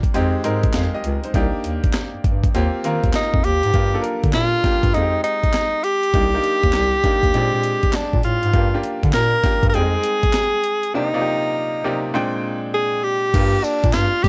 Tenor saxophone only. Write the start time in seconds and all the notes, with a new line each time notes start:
3.15 D#4
3.44 G4
4.34 F4
4.94 D#4
5.24 D#4
5.84 G4
7.95 D4
8.25 F4
9.14 A#4
9.69 A#4
9.75 G#4
10.95 D#4
12.74 G#4
13.04 G4
13.64 D4
13.93 F4
14.23 G4